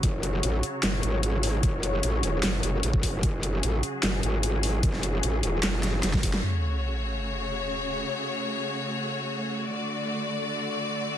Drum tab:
HH |x-x-x-x-x-x-x-o-|x-x-x-x-x-x-x-o-|x-x-x-x-x-x-x-o-|x-x-x-x-x-x-x-o-|
CP |--------x-------|--------x-------|--------x-------|--------x-------|
SD |--------o-------|--------o-------|--------o-------|-o------o-o-oo-o|
BD |o---------------|o------------oo-|o---------------|o------------oo-|

HH |----------------|----------------|----------------|
CP |----------------|----------------|----------------|
SD |----------------|----------------|----------------|
BD |----------------|----------------|----------------|